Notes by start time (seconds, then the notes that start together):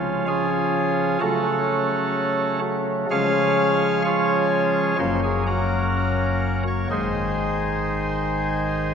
Already playing: C#3 F3 G#3 C#4 F4
0.27 C#4 F4 G#4
1.21 C#3 F#3 A3 C#4 F#4 A4
3.11 C#3 F3 G#3 C#4 G#4 C#5 F5
4.05 F4 G#4 C#5
4.98 F#1 F#2 F#3 A#3 C#4 C5
5.23 G#4
5.47 C#4 F#4 A#4
6.67 C#5
6.90 G#1 G#2 D#3 G#3 D#4 G#4 C5